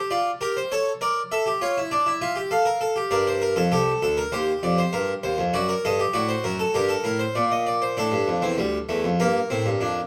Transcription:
0.00 0.10 G4 medium
0.10 0.30 F4 medium
0.10 0.29 D5 medium
0.41 0.60 G4 medium
0.41 0.56 A#4 medium
0.57 0.71 C5 medium
0.72 0.90 A4 medium
0.72 0.90 C#5 medium
1.01 1.20 A#4 medium
1.01 1.20 D5 medium
1.32 1.46 A4 medium
1.32 1.50 E5 medium
1.46 1.61 G4 medium
1.61 1.76 F4 medium
1.61 1.80 C#5 medium
1.78 1.92 E4 medium
1.91 2.06 D4 medium
1.91 2.10 D5 medium
2.06 2.21 E4 medium
2.22 2.36 F4 medium
2.22 2.40 E5 medium
2.36 2.51 G4 medium
2.51 2.66 A4 medium
2.51 3.10 F5 medium
2.65 2.81 A#4 medium
2.81 2.96 A4 medium
2.96 3.11 G4 medium
3.11 3.55 G2 medium
3.11 3.40 A#4 medium
3.11 3.26 D5 medium
3.27 3.42 C5 medium
3.42 3.57 A#4 medium
3.56 3.71 F2 medium
3.56 3.71 A4 medium
3.72 3.91 C2 medium
3.72 3.91 G4 medium
3.72 4.01 A4 medium
4.02 4.21 D2 medium
4.02 4.17 A4 medium
4.17 4.32 A#4 medium
4.32 4.51 D#2 medium
4.32 5.50 G4 medium
4.32 4.51 C5 medium
4.63 4.82 F2 medium
4.63 4.78 D5 medium
4.78 4.93 C5 medium
4.93 5.12 G2 medium
4.93 5.12 A#4 medium
5.23 5.38 D#2 medium
5.23 5.42 C5 medium
5.38 5.53 F2 medium
5.54 5.72 F#2 medium
5.54 5.68 F#4 medium
5.54 5.73 D5 medium
5.69 5.84 A#4 medium
5.85 6.03 G2 medium
5.85 5.99 A4 medium
5.85 6.03 D#5 medium
6.00 6.14 G4 medium
6.13 6.33 A2 medium
6.13 6.72 F#4 medium
6.13 6.29 D5 medium
6.28 6.43 C5 medium
6.44 6.63 F#2 medium
6.44 6.59 A#4 medium
6.59 6.74 A4 medium
6.74 6.93 G2 medium
6.74 6.89 G4 medium
6.74 7.03 A#4 medium
6.89 7.04 A4 medium
7.04 7.23 A2 medium
7.04 7.19 A#4 medium
7.19 7.34 C5 medium
7.35 7.95 A#2 medium
7.35 7.50 D5 medium
7.51 7.66 D#5 medium
7.67 7.81 D5 medium
7.82 7.96 C5 medium
7.97 8.12 A2 medium
7.97 8.41 D4 medium
7.97 9.15 A4 medium
8.12 8.27 G2 medium
8.28 8.42 F2 medium
8.42 8.57 E2 medium
8.42 8.57 C4 medium
8.58 8.77 D2 medium
8.58 8.77 G3 medium
8.89 9.03 E2 medium
8.89 9.07 A3 medium
9.04 9.18 F2 medium
9.20 9.38 G2 medium
9.20 9.38 A#3 medium
9.20 10.07 A#4 medium
9.50 9.64 A2 medium
9.50 9.69 C4 medium
9.66 9.80 G2 medium
9.81 9.99 F2 medium
9.81 9.99 D4 medium

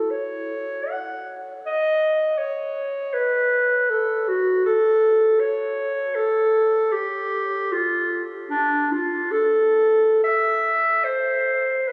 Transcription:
0.00 0.12 A4 medium
0.10 0.91 C#5 medium
0.90 1.38 F#5 medium
1.66 2.40 D#5 medium
2.38 3.15 C#5 medium
3.14 3.91 B4 medium
3.90 4.29 A4 medium
4.28 4.65 F#4 medium
4.65 5.41 A4 medium
5.40 6.17 C#5 medium
6.15 6.93 A4 medium
6.92 7.74 G4 medium
7.72 8.24 F4 medium
8.50 8.93 D4 medium
8.92 9.33 F4 medium
9.31 10.22 A4 medium
10.24 11.06 E5 medium
11.04 11.90 C5 medium
11.88 11.92 B4 medium

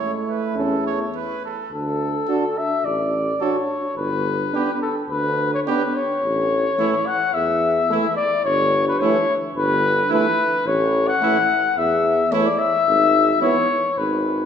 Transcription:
0.00 1.10 A3 soft
0.00 1.40 E4 soft
0.00 0.11 C#5 soft
0.29 0.57 B4 soft
0.55 1.04 E2 soft
0.55 0.76 C#4 soft
0.55 0.85 A4 soft
0.87 0.99 C#5 soft
1.15 1.43 B4 soft
1.45 1.72 A4 soft
1.72 2.19 D2 medium
1.72 2.59 A4 medium
2.28 2.44 D4 soft
2.28 2.45 F#4 soft
2.28 2.44 A4 soft
2.58 2.86 E5 medium
2.84 3.31 A1 medium
2.84 3.43 D5 medium
3.41 3.57 D4 soft
3.41 3.57 F#4 soft
3.41 3.57 A4 soft
3.41 3.97 C#5 medium
3.97 4.44 G1 medium
3.97 4.80 B4 medium
4.53 4.70 B3 soft
4.53 4.69 D4 soft
4.53 4.71 G4 soft
4.82 4.95 A4 medium
5.10 5.57 D2 medium
5.10 5.51 B4 medium
5.54 5.60 C#5 medium
5.67 5.83 B3 soft
5.67 5.83 D4 soft
5.67 5.83 G4 medium
5.67 5.97 B4 medium
5.95 7.08 C#5 medium
6.24 6.70 A1 medium
6.79 6.95 E3 medium
6.79 6.95 A3 medium
6.79 6.95 E4 medium
7.06 7.35 F#5 medium
7.33 7.81 E2 medium
7.33 8.16 E5 medium
7.90 8.07 E3 medium
7.90 8.06 A3 medium
7.90 8.07 E4 medium
8.16 8.44 D5 medium
8.44 8.92 G1 medium
8.44 8.86 C#5 medium
8.88 9.02 B4 medium
9.01 9.17 E3 medium
9.01 9.18 A3 medium
9.01 9.18 E4 medium
9.01 9.37 C#5 loud
9.56 10.02 G1 medium
9.56 10.08 B4 medium
10.10 10.27 E3 medium
10.10 10.27 A3 medium
10.10 10.26 E4 medium
10.10 10.69 B4 medium
10.65 11.13 A1 medium
10.65 11.09 C#5 medium
11.07 11.79 F#5 loud
11.21 11.38 E3 medium
11.21 11.37 A3 medium
11.21 11.38 E4 medium
11.77 12.22 E2 medium
11.77 12.33 E5 medium
12.32 12.49 E3 medium
12.32 12.48 A3 medium
12.32 12.48 E4 medium
12.32 12.47 C#5 medium
12.46 12.60 D5 medium
12.59 13.41 E5 loud
12.87 13.33 G#1 medium
13.40 13.58 E3 medium
13.40 13.58 B3 medium
13.40 13.56 E4 medium
13.40 13.99 C#5 medium
13.97 14.44 G#1 medium
13.97 14.46 B4 medium

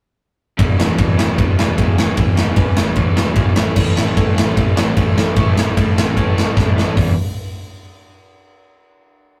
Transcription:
0.57 0.75 E1 loud
0.57 0.78 E2 medium
0.57 0.77 B2 loud
0.57 0.78 E3 loud
0.57 kick loud
0.57 ride medium
0.78 0.95 E1 medium
0.78 0.97 E2 loud
0.78 0.96 B2 medium
0.78 0.97 E3 loud
0.78 snare loud
0.97 1.17 E2 medium
0.97 1.14 E2 loud
0.97 1.16 B2 medium
0.97 1.18 E3 medium
0.97 kick loud
0.97 ride medium
1.18 1.35 E1 medium
1.18 1.37 E2 medium
1.18 1.37 B2 medium
1.18 1.38 E3 loud
1.18 snare loud
1.38 1.54 E1 medium
1.38 1.58 E2 medium
1.38 1.58 B2 medium
1.38 1.59 E3 medium
1.38 kick loud
1.38 ride medium
1.59 1.74 E1 medium
1.59 1.75 E2 medium
1.59 1.76 B2 medium
1.59 1.78 E3 medium
1.59 snare loud
1.77 2.09 E1 loud
1.77 1.97 E2 medium
1.77 1.97 B2 loud
1.77 1.98 E3 loud
1.77 kick loud
1.77 ride medium
1.98 2.16 E2 loud
1.98 2.17 B2 loud
1.98 2.17 E3 loud
1.98 snare loud
2.17 2.33 E1 medium
2.17 2.37 E2 loud
2.17 2.37 B2 loud
2.17 2.38 E3 loud
2.17 kick loud
2.17 ride medium
2.37 2.53 E1 medium
2.37 2.55 E2 medium
2.37 2.56 B2 loud
2.37 2.57 E3 loud
2.37 snare loud
2.56 2.75 E2 medium
2.56 2.73 E2 loud
2.56 2.75 B2 medium
2.56 2.77 E3 medium
2.56 kick loud
2.56 ride medium
2.77 2.93 E1 loud
2.77 2.96 E2 medium
2.77 2.96 B2 loud
2.77 2.96 E3 loud
2.77 snare loud
2.95 3.13 E1 medium
2.95 3.15 E2 medium
2.95 3.14 B2 medium
2.95 3.15 E3 medium
2.95 kick medium
2.95 ride medium
3.15 3.33 E1 medium
3.15 3.33 E2 medium
3.15 3.34 B2 medium
3.15 3.35 E3 medium
3.15 snare loud
3.34 3.52 G#1 medium
3.34 3.55 E2 medium
3.34 3.55 B2 loud
3.34 3.55 E3 loud
3.34 kick loud
3.34 ride medium
3.55 3.72 A1 medium
3.55 3.76 A2 medium
3.55 3.77 E3 loud
3.55 3.76 A3 loud
3.55 snare loud
3.76 3.92 A1 medium
3.76 3.96 A2 loud
3.76 3.97 E3 loud
3.76 3.97 A3 loud
3.76 kick loud
3.76 crash loud
3.96 4.13 A1 loud
3.96 4.16 A2 medium
3.96 4.17 E3 medium
3.96 4.17 A3 loud
3.96 snare loud
4.16 4.35 A2 medium
4.16 4.33 A2 loud
4.16 4.36 E3 medium
4.16 4.36 A3 medium
4.16 kick loud
4.16 ride medium
4.35 4.53 A1 medium
4.35 4.54 A2 loud
4.35 4.55 E3 loud
4.35 4.55 A3 loud
4.35 snare loud
4.55 4.73 A1 medium
4.55 4.75 A2 medium
4.55 4.76 E3 medium
4.55 4.76 A3 loud
4.55 kick loud
4.55 ride medium
4.76 4.93 A1 medium
4.76 4.95 A2 medium
4.76 4.96 E3 medium
4.76 4.96 A3 medium
4.76 snare loud
4.96 5.28 A1 medium
4.96 5.16 A2 medium
4.96 5.17 E3 loud
4.96 5.16 A3 loud
4.96 kick loud
4.96 ride medium
5.17 5.36 A2 loud
5.17 5.37 E3 loud
5.17 5.38 A3 loud
5.17 snare loud
5.36 5.52 A1 loud
5.36 5.56 A2 loud
5.36 5.56 E3 loud
5.36 5.56 A3 loud
5.36 kick loud
5.36 ride medium
5.57 5.73 A1 medium
5.57 5.76 A2 loud
5.57 5.76 E3 loud
5.57 5.76 A3 loud
5.57 snare loud
5.77 5.95 A2 medium
5.77 5.93 A2 loud
5.77 5.96 E3 medium
5.77 5.96 A3 medium
5.77 kick loud
5.77 ride medium
5.97 6.13 A1 medium
5.97 6.15 A2 medium
5.97 6.15 E3 loud
5.97 6.16 A3 loud
5.97 snare loud
6.16 6.33 A1 loud
6.16 6.34 A2 medium
6.16 6.34 E3 medium
6.16 6.35 A3 medium
6.16 kick loud
6.16 ride medium
6.35 6.53 A1 medium
6.35 6.55 A2 medium
6.35 6.55 E3 medium
6.35 6.55 A3 medium
6.35 snare loud
6.56 6.88 A1 medium
6.56 6.75 A2 medium
6.56 6.76 E3 medium
6.56 6.76 A3 loud
6.56 kick loud
6.56 snare medium
6.77 6.96 A2 loud
6.77 6.96 E3 loud
6.77 6.96 A3 loud
6.77 snare medium
6.95 7.16 E1 loud
6.95 7.12 E2 loud
6.95 7.13 B2 loud
6.95 7.13 E3 loud
6.95 kick loud
6.95 open hi-hat medium

